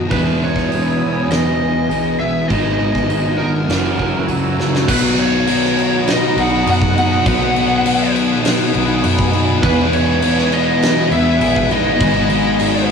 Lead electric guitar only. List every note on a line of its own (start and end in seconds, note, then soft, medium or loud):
0.12 0.42 B4 medium
0.44 1.31 C#5 medium
1.31 2.19 D#5 medium
2.19 2.48 E5 medium
2.49 3.41 D#5 loud
3.38 4.24 A#4 medium
4.89 5.19 B4 loud
5.19 6.11 C#5 loud
6.11 6.40 D#5 loud
6.40 6.69 F#5 loud
6.71 6.97 F#5 loud
6.98 8.12 F#5 loud
9.64 9.94 B4 medium
9.93 10.53 C#5 loud
10.54 11.12 D#5 loud
11.12 11.72 E5 loud
11.72 12.87 D#5 loud